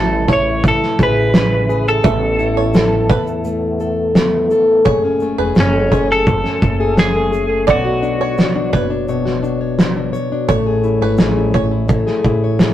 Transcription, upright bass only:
Already playing: A1
0.99 A1
2.04 A1
3.09 E2
4.86 F#1
5.39 E1
5.57 F#1
6.62 F#1
7.68 B1
8.74 F#1
10.48 A1
11.01 G#1
11.18 A1
12.25 A1

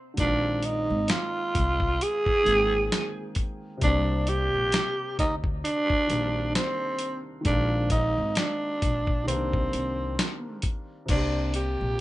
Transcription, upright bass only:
0.18 A#1
0.90 G#1
1.55 C2
2.46 G#1
3.82 C2
4.54 A#1
5.19 D2
6.10 A#1
7.46 A#1
8.18 G#1
8.83 A#1
9.28 C2
9.74 C2
11.09 C2
11.81 A#1

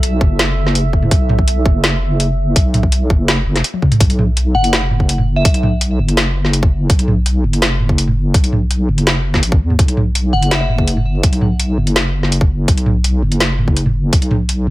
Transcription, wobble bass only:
Already playing: B1
0.21 F#1
1.11 B1
1.66 F#1
2.56 B1
3.10 F#1
3.46 F#1
4.00 B1
4.55 F#1
5.45 B1
5.99 F#1
6.90 B1
7.44 F#1
8.34 B1
8.89 F#1
9.43 A1
9.61 E2
9.79 B1
10.33 F#1
11.23 B1
11.78 F#1
12.68 B1
13.22 F#1
14.13 B1
14.67 F#1

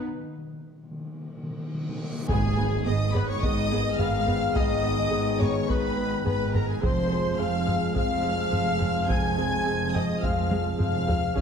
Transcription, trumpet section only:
2.29 G#4
2.86 D#5
3.14 B4
3.28 C#5
3.43 D#5
3.99 F5
4.56 D#5
5.40 C#5
5.69 B4
6.25 B4
6.54 A#4
6.67 G#4
6.82 C5
7.39 F5
7.96 F5
9.10 G#5
9.95 D#5
10.23 F5
10.80 F5
11.37 F5

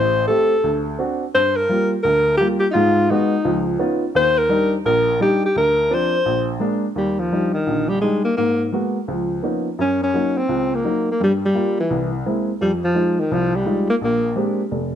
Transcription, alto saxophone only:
Already playing: C5
0.27 A4
1.34 C5
1.56 A#4
2.03 A#4
2.37 G4
2.60 G4
2.71 D#4 F4
3.10 D#4
4.16 C5
4.38 A#4
4.86 A#4
5.22 G4
5.45 G4
5.57 A#4
5.94 C5
6.97 G3
7.20 F3
7.54 D#3
7.89 G3
8.01 G#3
8.25 A#3
8.37 A#3
9.81 C#4
10.04 C#4
10.38 C4
10.75 A#3
11.12 A#3
11.24 G3
11.45 G3
11.80 E3
12.62 G3
12.84 F3
13.20 D#3
13.33 F3
13.56 G3
13.90 A#3
14.04 A#3

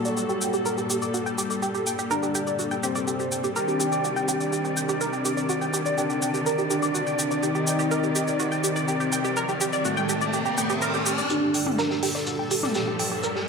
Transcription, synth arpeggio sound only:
0.05 D5
0.17 G4
0.29 G4
0.41 G5
0.54 G4
0.66 A#4
0.78 G4
0.90 G4
1.02 D5
1.14 F#4
1.26 G5
1.38 G4
1.50 D5
1.62 G4
1.75 G4
1.87 G5
1.99 G4
2.11 A#4
2.23 G4
2.35 G4
2.47 D5
2.59 F#4
2.71 G5
2.83 G4
2.95 D5
3.07 G4
3.20 G4
3.32 G5
3.44 G4
3.56 A#4
3.68 G4
3.80 G4
3.92 D5
4.04 F#4
4.16 G5
4.28 G4
4.40 D5
4.53 G4
4.65 G4
4.77 G5
4.89 G4
5.01 A#4
5.13 G4
5.25 G4
5.37 D5
5.49 F#4
5.61 G5
5.74 G4
5.86 D5
5.98 G4
6.10 G4
6.22 G5
6.34 G4
6.46 A#4
6.58 G4
6.70 G4
6.82 D5
6.95 F#4
7.07 G5
7.19 G4
7.31 D5
7.43 G4
7.55 G4
7.67 G5
7.79 G4
7.91 A#4
8.03 G4
8.15 G4
8.28 D5
8.40 F#4
8.52 G5
8.64 G4
8.76 D5
8.88 G4
9.00 G4
9.12 G5
9.25 G4
9.37 A#4
9.49 G4
9.61 G4
9.73 D5
9.85 F#4
9.97 G5
10.09 G4
10.21 D5
10.33 G4
10.46 G4
10.58 G5
10.70 G4
10.82 A#4
10.94 G4
11.06 G4
11.18 D5
11.30 G4
11.42 G4
11.54 G5
11.66 G4
11.79 A#4
11.91 G4
12.03 G4
12.15 D5
12.27 F#4
12.39 G5
12.51 G4
12.63 D5
12.75 G4
12.87 G4
12.99 G5
13.12 G4
13.24 A#4
13.36 G4

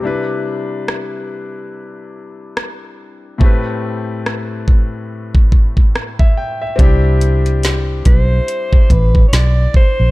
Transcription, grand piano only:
0.00 C3 G3 D4
0.05 E4 B4
3.38 A2 A3 C4
3.43 G4 B4
6.19 E5
6.37 G5
6.62 E5
6.76 G3 C4 D4
6.81 E4 G4

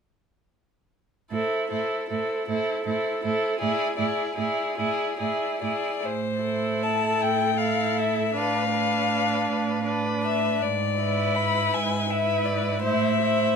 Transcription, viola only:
1.31 E4
1.71 E4
2.09 E4
2.48 E4
2.85 E4
3.23 E4
3.60 E4
3.97 E4
4.36 E4
4.77 E4
5.20 E4
5.63 E4
6.42 E4
7.58 E4
8.34 D4
8.72 D4
9.86 D4
11.01 E4
12.09 E4
12.84 E4
13.23 E4

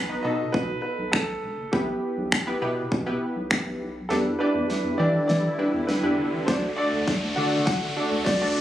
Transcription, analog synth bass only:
0.10 B1
0.25 B2
0.54 B2
0.99 B1
1.28 B1
1.43 E1
1.58 F#1
1.73 B1
2.17 B1
2.47 B1
2.62 B2
2.92 B2
3.36 B1
3.66 B1
3.81 B1
4.10 E2
4.55 E2
4.85 E2
4.99 E3
5.29 E3
5.74 E2
6.03 E2
6.18 G1
6.33 A1
6.48 D2
6.93 D2
7.22 D2
7.37 D3
7.67 D3
8.12 D2
8.41 D2
8.56 G1

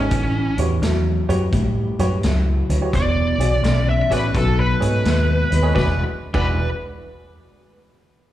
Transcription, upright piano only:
0.00 D#4 G#4 A4 C#5
0.59 F#4 G4 B4 C#5
1.29 F#4 G4 B4 C#5
1.99 F#4 G4 B4 C#5
2.70 B4 C#5
2.81 F#4 G4 B4 C#5
3.39 F#4 G#4 C#5 D5
4.10 F#4 G#4 C#5 D5
4.80 G#4 A4 C#5 D#5
5.50 C#5 D#5
5.62 G#4 A4 C#5 D#5
5.74 F#4 G#4 B4 D5
6.34 F#4 G#4 B4 D5

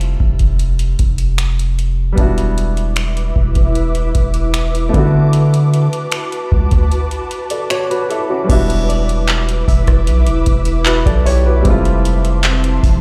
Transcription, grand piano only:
Already playing: G3 A3 C4 E4 F4
2.13 G3 B3
2.17 D4 E4
2.22 F#4
4.89 A3 B3
4.94 D4 E4
4.99 F#4
7.50 A4 D5
7.70 F#4 C#5
7.90 F#4 B4
8.10 E4 A4
8.29 C#4 F#4
8.44 G3 B3
8.49 D4 E4
8.54 F#4
10.86 F#4 B4
11.06 A4 D5
11.26 G4 C#5
11.46 F#4 B4
11.60 G3 G#3
11.65 C4 E4
11.69 A3 F4

